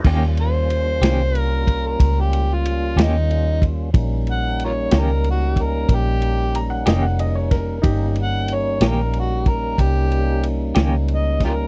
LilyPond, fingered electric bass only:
\new Staff \with { instrumentName = "Fingered electric bass" } { \clef bass \time 12/8 \key ees \mixolydian \tempo 4. = 62 ees,4. c,4. des,4. ees,4. | bes,,4. des,4. bes,,4. f,,4. | g,,4. bes,,4. c,4. des,4. | }